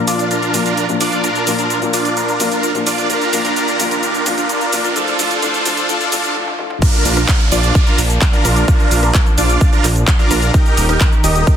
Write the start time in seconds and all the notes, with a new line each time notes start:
Already playing: A#2 F3 A#3 D4 F4 A#4, riser
0.08 D4 F4 D5, open hi-hat, cabasa
0.19 closed hi-hat, cabasa
0.31 D4 F4 A#4, closed hi-hat, cabasa
0.42 closed hi-hat, cabasa
0.53 A#2 F3 A#3 D4 F4, open hi-hat, cabasa
0.66 D4 F4 A#4, closed hi-hat, cabasa
0.77 closed hi-hat, cabasa
0.88 A#2 F3 A#3 D4 F4, closed hi-hat, cabasa
1.01 D4 F4 D5, open hi-hat, cabasa
1.12 closed hi-hat, cabasa
1.24 D4 F4 A#4, closed hi-hat, cabasa
1.35 closed hi-hat, cabasa
1.47 A#2 F3 A#3 D4 F4, open hi-hat, cabasa
1.59 D4 F4 A#4, closed hi-hat, cabasa
1.70 closed hi-hat, cabasa
1.81 A#2 F3 A#3 D4 F4, closed hi-hat, cabasa
1.94 D4 F4 D5, open hi-hat, cabasa
2.05 closed hi-hat, cabasa
2.17 D4 F4 A#4, closed hi-hat, cabasa
2.28 closed hi-hat, cabasa
2.39 A#2 F3 A#3 D4 F4, open hi-hat, cabasa
2.52 D4 F4 A#4, closed hi-hat, cabasa
2.63 closed hi-hat, cabasa
2.74 A#2 F3 A#3 D4 F4, closed hi-hat, cabasa
2.87 D4 F4 D5, open hi-hat, cabasa
2.98 closed hi-hat, cabasa
3.10 D#2 D#3 D4 F4 G4 A#4, closed hi-hat, cabasa
3.21 closed hi-hat, cabasa
3.33 A#2 F3 A#3 D4 F4, open hi-hat, cabasa
3.45 D4 F4 A#4, closed hi-hat, cabasa
3.56 D4 F4 A#4, closed hi-hat, cabasa
3.68 closed hi-hat, cabasa
3.79 A#2 F3 A#3 D4 F4, open hi-hat, cabasa
3.91 D4 F4 A#4, closed hi-hat, cabasa
4.03 D4 F4 A#4, closed hi-hat, cabasa
4.15 closed hi-hat, cabasa
4.26 A#2 F3 A#3 D4 F4, open hi-hat, cabasa
4.38 D4 F4 A#4, closed hi-hat, cabasa
4.49 D4 F4 A#4, closed hi-hat, cabasa
4.61 closed hi-hat, cabasa
4.72 A#2 F3 A#3 D4 F4, open hi-hat, cabasa
4.84 D4 F4 A#4, closed hi-hat, cabasa
4.95 F2 A2 F3 A3 D4 F4 A4 C5, closed hi-hat, cabasa
5.08 closed hi-hat, cabasa
5.19 A2 F3 A3 D4 F4 A4, open hi-hat, cabasa
5.31 closed hi-hat, cabasa
5.42 A2 F3 A3 D4 F4 A4, closed hi-hat, cabasa
5.54 closed hi-hat, cabasa
5.65 A2 F3 A3 D4 F4 A4, open hi-hat, cabasa
5.77 closed hi-hat, cabasa
5.88 A2 F3 A3 D4 F4 A4, closed hi-hat, cabasa
6.01 closed hi-hat, cabasa
6.12 A2 F3 A3 D4 F4 A4, open hi-hat, cabasa
6.24 closed hi-hat, cabasa
6.35 A2 F3 A3 D4 F4
6.47 high tom
6.58 A2 F3 A3 D4 F4, mid tom
6.70 mid tom
6.82 F3 A#3 D4 F4 A#4, kick, closed hi-hat, crash, downlifter, cabasa
6.94 closed hi-hat, cabasa
7.05 A#1, open hi-hat, cabasa
7.17 D4 F4 A#4, cross-stick, closed hi-hat, cabasa
7.28 kick, clap, closed hi-hat, cabasa
7.40 closed hi-hat, cabasa
7.52 A#1 D4 F4 D5, open hi-hat, cabasa
7.63 closed hi-hat, cabasa
7.75 kick, closed hi-hat, cabasa
7.87 D4 F4 A#4, closed hi-hat, cabasa
7.98 A#1, open hi-hat, cabasa
8.10 closed hi-hat, cabasa
8.21 kick, clap, closed hi-hat, cabasa
8.33 D4 F4 A#4, closed hi-hat, cabasa
8.45 A#1, cross-stick, open hi-hat, cabasa
8.56 closed hi-hat, cabasa
8.68 A#4, kick, closed hi-hat, cabasa
8.80 closed hi-hat, cabasa
8.91 A#1, open hi-hat, cabasa
9.03 D4 F4 A#4, cross-stick, closed hi-hat, cabasa
9.14 kick, clap, closed hi-hat, cabasa
9.26 closed hi-hat, cabasa
9.38 A#1 D4 F4 D5, open hi-hat, cabasa
9.49 closed hi-hat, cabasa
9.61 kick, closed hi-hat, cabasa
9.73 D4 F4 A#4, closed hi-hat, cabasa
9.84 A#1, clap, open hi-hat, cabasa
9.96 closed hi-hat, cabasa
10.07 kick, clap, closed hi-hat, cabasa
10.19 D4 F4 A#4, closed hi-hat, cabasa
10.31 A#1, cross-stick, open hi-hat, cabasa
10.42 closed hi-hat, cabasa
10.54 D#3 D#4 G4 A#4, kick, closed hi-hat, cabasa
10.66 closed hi-hat, cabasa
10.77 D#1, open hi-hat, cabasa
10.89 D#4 G4 A#4, cross-stick, closed hi-hat, cabasa
11.01 kick, clap, closed hi-hat, cabasa
11.12 closed hi-hat, cabasa
11.24 D#1 D#4 G4 D#5, open hi-hat, cabasa
11.36 closed hi-hat, cabasa
11.47 kick, closed hi-hat, cabasa